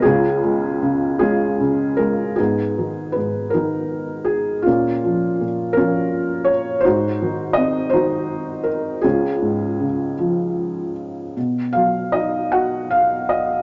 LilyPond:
<<
  \new Staff \with { instrumentName = "Felt piano" } { \time 6/8 \key gis \dorian \tempo 4. = 53 << { gis'4. gis'4 ais'8 | gis'4 b'8 ais'4 gis'8 | eis'4 r8 ais'4 cis''8 | bis'4 dis''8 bis'4 ais'8 |
gis'4 r2 | r8 eis''8 dis''8 fis''8 eis''8 dis''8 | } \\ { <cis' eis'>4. <cis' eis'>4. | <b dis'>4. dis'4. | <ais cis'>4. <cis' eis'>4. | <dis' fis'>4. <dis' fis'>4. |
<cis' eis'>4. r4. | r2. | } >> }
  \new Staff \with { instrumentName = "Felt piano" } { \clef bass \time 6/8 \key gis \dorian <cis, cis>8 gis8 cis8 gis8 cis8 gis8 | gis,8 dis8 gis,8 dis4. | ais,8 eis8 ais,8 eis4. | gis,8 dis8 bis8 dis4. |
cis,8 gis,8 cis8 eis4. | b,8 fis8 dis'8 fis'4. | }
>>